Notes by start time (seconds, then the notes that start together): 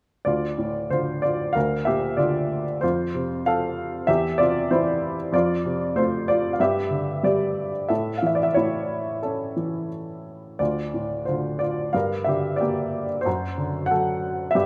0.25 D2 F4 D5
0.58 A2
0.90 D3 F4 C5
1.22 F4 D5
1.53 D2 A#4 F5
1.85 A#2 G4 E5
2.17 D3 F4 D5
2.81 F2 F4 C5
3.15 C3
3.46 F3 A4 F5
4.07 E2 G4 E5
4.38 C3 F4 D5
4.71 E3 E4 C5
5.32 F2 F4 D5
5.66 C3
5.96 A3 F4 C5
6.28 F4 D5
6.53 F5
6.60 G2 G4 E5
6.91 D3
7.23 G3 G4 D5
7.89 A2 A4 E5
8.18 F5
8.22 E3
8.27 E5
8.35 D5
8.43 E5
8.54 A2 E4 C#5
9.23 C#4 A4
9.56 E3
10.59 D2 F4 D5
10.94 A2
11.25 D3 F4 C5
11.59 F4 D5
11.93 G2 A#4 F5
12.24 D3 G4 E5
12.56 D5
12.61 A#3 G4
13.21 F#4 C5
13.26 F#2
13.58 D3
13.86 F#5
13.91 F#3 A4
14.51 E5
14.55 G2 G4